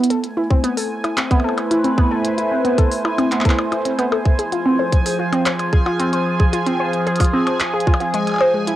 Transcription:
0.04 closed hi-hat medium
0.10 4.39 A3 medium
0.10 0.18 A4 medium
0.10 8.76 G#5 medium
0.10 closed hi-hat medium
0.24 closed hi-hat medium
0.37 0.41 E4 medium
0.50 0.58 C4 medium
0.50 kick loud
0.61 0.71 B3 loud
0.61 8.67 C5 medium
0.61 closed hi-hat medium
0.77 4.39 E4 medium
0.77 0.85 A4 medium
0.77 open hi-hat medium
1.04 1.08 E4 medium
1.04 closed hi-hat soft
1.04 percussion blips medium
1.17 1.25 C4 medium
1.17 4.39 B4 medium
1.17 clap loud
1.17 closed hi-hat medium
1.17 percussion blips soft
1.31 1.38 B3 loud
1.31 kick loud
1.31 closed hi-hat medium
1.31 percussion blips soft
1.40 percussion blips soft
1.44 1.52 A4 medium
1.49 percussion blips soft
1.58 closed hi-hat soft
1.58 percussion blips medium
1.71 1.75 E4 medium
1.71 closed hi-hat medium
1.84 1.92 C4 medium
1.84 closed hi-hat medium
1.98 2.05 B3 loud
1.98 kick loud
2.11 2.19 A4 medium
2.25 closed hi-hat medium
2.38 2.42 E4 medium
2.38 closed hi-hat medium
2.51 2.59 C4 medium
2.65 2.72 B3 loud
2.65 closed hi-hat soft
2.78 2.85 A4 medium
2.78 kick loud
2.78 closed hi-hat medium
2.92 open hi-hat medium
3.05 3.09 E4 medium
3.05 percussion blips medium
3.18 3.26 C4 medium
3.18 closed hi-hat soft
3.18 percussion blips medium
3.32 3.39 B3 loud
3.32 clap medium
3.32 closed hi-hat medium
3.41 clap medium
3.45 3.52 A4 medium
3.45 kick loud
3.45 closed hi-hat medium
3.50 clap medium
3.59 percussion blips medium
3.72 3.76 E4 medium
3.72 closed hi-hat soft
3.72 percussion blips medium
3.85 3.93 C4 medium
3.85 closed hi-hat medium
3.99 4.06 B3 loud
3.99 closed hi-hat medium
3.99 percussion blips soft
4.12 4.19 A4 medium
4.12 percussion blips medium
4.25 kick loud
4.39 8.67 F3 medium
4.39 4.43 G#4 medium
4.39 closed hi-hat medium
4.52 4.60 F4 medium
4.52 closed hi-hat medium
4.64 4.73 C4 loud
4.64 8.76 G#4 medium
4.71 8.67 F4 medium
4.79 4.86 C5 medium
4.92 kick loud
4.92 closed hi-hat medium
5.06 5.10 G#4 medium
5.06 open hi-hat medium
5.19 5.27 F4 medium
5.33 5.40 C4 loud
5.33 closed hi-hat soft
5.33 percussion blips soft
5.46 5.53 C5 medium
5.46 clap loud
5.46 closed hi-hat medium
5.46 percussion blips soft
5.59 closed hi-hat medium
5.59 percussion blips soft
5.73 5.77 G#4 medium
5.73 kick loud
5.86 5.93 F4 medium
5.86 percussion blips soft
6.00 6.07 C4 loud
6.00 closed hi-hat medium
6.13 6.20 C5 medium
6.13 closed hi-hat medium
6.40 6.44 G#4 medium
6.40 kick loud
6.53 6.60 F4 medium
6.53 closed hi-hat medium
6.67 6.74 C4 loud
6.67 closed hi-hat soft
6.80 6.87 C5 medium
6.93 closed hi-hat soft
7.07 7.11 G#4 medium
7.07 closed hi-hat soft
7.16 closed hi-hat soft
7.20 7.27 F4 medium
7.20 kick loud
7.20 open hi-hat medium
7.20 percussion blips medium
7.25 closed hi-hat medium
7.33 7.41 C4 loud
7.47 7.54 C5 medium
7.47 closed hi-hat soft
7.47 percussion blips medium
7.60 clap loud
7.60 closed hi-hat medium
7.74 7.78 G#4 medium
7.80 closed hi-hat soft
7.87 7.94 F4 medium
7.87 kick loud
7.94 percussion blips medium
8.00 8.11 F4 medium
8.00 closed hi-hat soft
8.14 8.25 G#3 medium
8.14 closed hi-hat medium
8.27 closed hi-hat medium
8.27 percussion blips soft
8.29 percussion blips soft
8.32 percussion blips soft
8.34 percussion blips soft
8.36 percussion blips soft
8.38 8.45 C5 loud
8.38 percussion blips soft
8.41 percussion blips soft
8.54 8.58 G#3 medium
8.67 8.76 C#3 medium
8.67 8.76 E4 medium
8.67 closed hi-hat medium

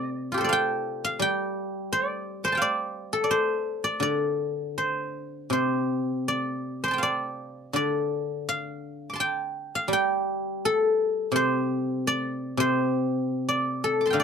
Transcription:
0.00 1.20 C3 medium
0.00 0.37 A4 medium
0.00 0.40 C5 medium
0.00 0.44 D5 medium
0.32 2.85 F4 soft
0.32 2.70 G4 soft
0.38 2.57 A4 soft
0.38 2.39 C5 medium
0.44 1.92 D5 medium
0.49 1.04 F5 medium
0.49 1.22 G5 medium
1.05 2.57 F5 medium
1.19 3.30 G3 medium
1.19 2.54 G5 medium
1.93 2.61 D5 medium
2.44 3.30 C5 medium
2.44 3.78 C6 soft
2.44 3.66 D6 soft
2.52 4.10 G5 soft
2.52 3.97 A5 soft
2.57 4.24 F5 soft
2.62 3.23 D5 medium
3.13 5.32 A4 medium
3.24 3.84 D5 medium
3.31 4.77 C5 medium
3.84 4.02 D5 medium
4.00 6.26 D3 soft
4.00 5.87 D5 medium
4.78 5.52 C5 medium
5.50 7.74 C3 soft
5.50 6.83 C5 medium
6.28 7.02 D5 medium
6.84 8.82 C5 medium
6.84 8.06 D6 soft
6.88 8.36 A5 soft
6.88 8.19 C6 soft
6.93 8.49 G5 soft
6.98 8.48 F5 soft
7.03 7.75 D5 medium
7.73 9.90 D3 medium
7.73 9.60 D5 medium
8.49 9.75 F5 medium
9.10 10.44 C6 soft
9.10 10.31 D6 soft
9.16 10.60 A5 soft
9.20 9.93 G5 medium
9.75 11.42 F5 medium
9.88 12.04 G3 medium
9.93 11.48 G5 medium
10.65 12.85 A4 medium
11.32 12.56 C3 medium
11.36 12.60 C5 medium
12.07 13.48 D5 medium
12.57 14.15 C3 medium
12.57 14.24 C5 medium
13.49 14.19 D5 medium
13.84 14.24 A4 medium
14.01 14.24 D6 soft
14.06 14.24 A5 soft
14.06 14.24 C6 soft
14.10 14.24 D3 soft
14.10 14.24 F5 soft
14.10 14.24 G5 soft
14.20 14.24 D5 medium

